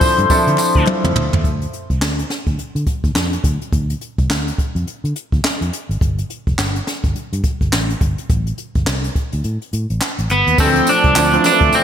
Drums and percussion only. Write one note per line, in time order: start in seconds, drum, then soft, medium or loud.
0.01 kick loud
0.01 open hi-hat medium
0.01 tambourine medium
0.18 closed hi-hat medium
0.30 kick medium
0.30 closed hi-hat medium
0.30 tambourine medium
0.47 closed hi-hat medium
0.58 clap medium
0.58 closed hi-hat medium
0.58 tambourine medium
0.75 kick medium
0.75 closed hi-hat soft
0.87 clap medium
0.87 high tom medium
1.04 mid tom medium
1.16 mid tom loud
1.33 floor tom medium
1.44 kick loud
1.44 closed hi-hat medium
1.62 closed hi-hat medium
1.73 closed hi-hat medium
1.90 kick medium
1.90 closed hi-hat soft
2.02 snare loud
2.02 clap medium
2.19 closed hi-hat medium
2.30 snare medium
2.30 closed hi-hat medium
2.47 kick medium
2.47 closed hi-hat soft
2.59 closed hi-hat medium
2.76 closed hi-hat medium
2.87 kick medium
2.87 closed hi-hat medium
3.04 kick medium
3.04 closed hi-hat soft
3.15 snare loud
3.15 clap medium
3.33 closed hi-hat medium
3.44 kick loud
3.44 closed hi-hat medium
3.61 closed hi-hat medium
3.72 kick loud
3.72 closed hi-hat medium
3.90 closed hi-hat medium
4.01 closed hi-hat medium
4.18 kick medium
4.18 closed hi-hat soft
4.30 snare loud
4.30 clap medium
4.48 closed hi-hat medium
4.58 kick medium
4.58 closed hi-hat medium
4.76 closed hi-hat soft
4.87 closed hi-hat medium
5.05 closed hi-hat soft
5.16 closed hi-hat medium
5.32 kick medium
5.32 closed hi-hat soft
5.44 snare loud
5.44 clap medium
5.62 closed hi-hat medium
5.73 closed hi-hat medium
5.91 closed hi-hat medium
6.01 kick loud
6.01 closed hi-hat medium
6.18 closed hi-hat medium
6.30 closed hi-hat medium
6.47 kick medium
6.47 closed hi-hat soft
6.58 snare loud
6.58 clap medium
6.76 closed hi-hat medium
6.87 snare medium
6.87 closed hi-hat medium
7.04 kick medium
7.04 closed hi-hat soft
7.16 closed hi-hat medium
7.33 closed hi-hat medium
7.44 kick medium
7.44 closed hi-hat medium
7.61 kick medium
7.61 closed hi-hat soft
7.73 snare loud
7.73 clap medium
7.90 closed hi-hat medium
8.01 kick loud
8.01 closed hi-hat medium
8.18 closed hi-hat soft
8.29 kick loud
8.29 closed hi-hat medium
8.47 closed hi-hat medium
8.58 closed hi-hat medium
8.75 kick medium
8.75 closed hi-hat soft
8.87 snare loud
8.87 clap medium
9.04 closed hi-hat medium
9.15 kick medium
9.15 closed hi-hat medium
9.32 closed hi-hat soft
9.44 closed hi-hat medium
9.62 closed hi-hat soft
9.73 closed hi-hat medium
9.90 closed hi-hat soft
10.01 snare medium
10.01 clap medium
10.18 closed hi-hat medium
10.30 closed hi-hat medium
10.47 closed hi-hat medium
10.58 kick loud
10.58 crash medium
10.58 tambourine medium
10.75 closed hi-hat medium
10.87 closed hi-hat medium
10.87 tambourine medium
11.04 kick medium
11.04 closed hi-hat soft
11.16 snare loud
11.16 clap medium
11.16 tambourine loud
11.33 closed hi-hat medium
11.44 snare medium
11.44 closed hi-hat medium
11.44 tambourine medium
11.61 kick loud
11.61 closed hi-hat medium
11.72 closed hi-hat medium
11.72 tambourine medium